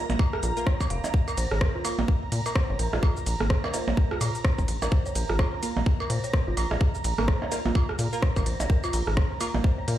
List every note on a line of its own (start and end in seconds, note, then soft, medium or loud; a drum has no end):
0.00 9.98 A#5 medium
0.10 0.16 A#1 loud
0.10 open hi-hat soft
0.10 percussion blips medium
0.19 kick loud
0.19 percussion blips medium
0.33 0.36 A#4 medium
0.33 cross-stick medium
0.43 0.52 A#1 loud
0.43 0.47 F4 medium
0.43 open hi-hat medium
0.43 cabasa soft
0.57 0.66 A#3 medium
0.57 0.66 F4 medium
0.57 0.64 A#4 medium
0.57 0.66 A#4 loud
0.57 open hi-hat soft
0.57 cabasa soft
0.66 0.73 C#5 loud
0.66 kick loud
0.66 cross-stick medium
0.80 0.85 A#4 medium
0.80 kick medium
0.80 percussion blips medium
0.80 cabasa soft
0.90 1.00 F1 medium
0.90 0.97 F5 loud
0.90 open hi-hat medium
1.04 percussion blips medium
1.04 cabasa soft
1.14 kick loud
1.28 1.30 A#4 medium
1.28 percussion blips medium
1.28 cabasa soft
1.37 1.47 A#1 loud
1.37 1.44 C5 medium
1.37 open hi-hat loud
1.37 ride medium
1.37 cabasa soft
1.51 1.66 G#1 loud
1.51 1.56 C#5 medium
1.51 cross-stick medium
1.61 1.71 A#4 medium
1.61 kick loud
1.61 cross-stick loud
1.75 1.80 F4 medium
1.85 1.97 A#3 medium
1.85 1.97 F4 medium
1.85 1.97 A#4 medium
1.85 1.89 A#5 medium
1.85 open hi-hat medium
1.85 ride medium
1.85 percussion blips medium
1.85 cabasa soft
1.99 2.05 A#1 loud
1.99 percussion blips medium
1.99 percussion blips loud
2.08 kick loud
2.32 2.41 A#2 medium
2.32 open hi-hat medium
2.32 ride medium
2.46 2.49 A#4 medium
2.46 open hi-hat soft
2.46 percussion blips medium
2.46 cabasa soft
2.56 2.62 C5 medium
2.56 kick loud
2.56 cross-stick loud
2.69 2.76 G#1 medium
2.69 2.74 C#5 medium
2.79 2.89 A#1 medium
2.79 2.89 A#4 medium
2.79 open hi-hat medium
2.79 ride medium
2.93 3.00 A#1 medium
2.93 2.98 F4 medium
2.93 cross-stick medium
2.93 percussion blips medium
3.03 3.07 A#5 medium
3.03 kick loud
3.03 percussion blips medium
3.17 cabasa soft
3.26 3.36 A#1 loud
3.26 open hi-hat medium
3.26 ride medium
3.26 cabasa soft
3.40 3.55 G#1 loud
3.40 cross-stick medium
3.40 percussion blips medium
3.50 kick loud
3.50 cross-stick loud
3.64 3.67 A#4 medium
3.64 percussion blips medium
3.74 3.86 A#3 medium
3.74 3.86 F4 medium
3.74 3.86 A#4 medium
3.74 3.80 C5 medium
3.74 open hi-hat loud
3.74 ride medium
3.74 percussion blips medium
3.74 cabasa soft
3.88 3.94 A#1 loud
3.88 3.92 C#5 medium
3.88 percussion blips medium
3.88 percussion blips loud
3.97 4.07 A#4 medium
3.97 kick loud
4.11 4.16 F4 medium
4.11 cross-stick medium
4.21 4.30 A#2 medium
4.21 4.25 A#5 medium
4.21 open hi-hat medium
4.21 ride medium
4.21 percussion blips medium
4.21 cabasa soft
4.35 open hi-hat soft
4.35 cabasa soft
4.45 kick loud
4.45 cross-stick loud
4.58 4.65 G#1 medium
4.58 kick medium
4.58 cabasa soft
4.68 4.78 A#1 medium
4.68 open hi-hat medium
4.68 ride medium
4.82 4.89 A#1 medium
4.82 4.85 A#4 medium
4.82 percussion blips medium
4.82 cabasa soft
4.92 4.98 C5 medium
4.92 kick loud
5.06 5.10 C#5 medium
5.06 cabasa soft
5.15 5.25 A#1 loud
5.15 5.25 A#4 medium
5.15 open hi-hat loud
5.15 ride medium
5.15 cabasa soft
5.29 5.44 G#1 loud
5.29 5.34 F4 medium
5.29 cross-stick medium
5.39 5.43 A#5 medium
5.39 kick loud
5.39 cross-stick loud
5.39 percussion blips medium
5.63 5.75 A#3 medium
5.63 5.75 F4 medium
5.63 5.75 A#4 medium
5.63 open hi-hat loud
5.63 ride medium
5.63 cabasa soft
5.77 5.83 A#1 loud
5.77 percussion blips medium
5.77 percussion blips loud
5.86 kick loud
6.00 6.03 A#4 medium
6.00 percussion blips medium
6.10 6.19 A#2 medium
6.10 6.16 C5 medium
6.10 open hi-hat loud
6.10 ride medium
6.24 6.28 C#5 medium
6.24 open hi-hat soft
6.24 cabasa soft
6.33 6.43 A#4 medium
6.33 kick loud
6.33 cross-stick medium
6.47 6.54 G#1 medium
6.47 6.52 F4 medium
6.57 6.67 A#1 medium
6.57 6.61 A#5 medium
6.57 open hi-hat loud
6.57 ride medium
6.57 percussion blips medium
6.71 6.78 A#1 medium
6.71 cross-stick medium
6.71 percussion blips medium
6.81 kick loud
6.95 cabasa soft
7.04 7.14 A#1 loud
7.04 open hi-hat loud
7.04 ride medium
7.04 cabasa soft
7.18 7.33 G#1 loud
7.18 7.21 A#4 medium
7.18 cross-stick medium
7.18 percussion blips medium
7.28 7.34 C5 medium
7.28 kick loud
7.28 cross-stick medium
7.42 7.46 C#5 medium
7.42 percussion blips medium
7.52 7.64 A#3 medium
7.52 7.64 F4 medium
7.52 7.64 A#4 medium
7.52 7.61 A#4 medium
7.52 open hi-hat loud
7.52 ride medium
7.52 percussion blips medium
7.52 cabasa soft
7.65 7.72 A#1 loud
7.65 7.70 F4 medium
7.65 percussion blips medium
7.75 7.79 A#5 medium
7.75 kick loud
7.75 percussion blips medium
7.89 cross-stick medium
7.99 8.08 A#2 medium
7.99 open hi-hat loud
7.99 ride medium
7.99 cabasa soft
8.13 8.21 A#3 loud
8.13 8.21 F4 medium
8.13 8.21 A#4 loud
8.13 open hi-hat soft
8.13 cabasa soft
8.22 kick loud
8.22 cross-stick medium
8.36 8.43 G#1 medium
8.36 8.39 A#4 medium
8.36 kick medium
8.36 percussion blips medium
8.36 cabasa soft
8.46 8.56 A#1 medium
8.46 8.53 C5 medium
8.46 open hi-hat loud
8.46 ride medium
8.60 8.67 A#1 medium
8.60 8.65 C#5 medium
8.60 percussion blips medium
8.60 cabasa soft
8.70 8.79 A#4 medium
8.70 kick loud
8.84 8.88 F4 medium
8.84 percussion blips medium
8.84 cabasa soft
8.93 9.03 A#1 loud
8.93 8.97 A#5 medium
8.93 open hi-hat medium
8.93 ride medium
8.93 cabasa soft
9.07 9.22 G#1 loud
9.07 cross-stick medium
9.17 kick loud
9.17 cross-stick medium
9.41 9.53 A#3 medium
9.41 9.53 F4 medium
9.41 9.53 A#4 medium
9.41 open hi-hat medium
9.41 ride medium
9.41 percussion blips medium
9.41 cabasa soft
9.54 9.61 A#1 loud
9.54 9.57 A#4 medium
9.54 percussion blips medium
9.64 9.71 C5 medium
9.64 kick loud
9.78 9.83 C#5 medium
9.88 9.97 A#2 medium
9.88 9.98 A#4 medium
9.88 open hi-hat medium
9.88 ride medium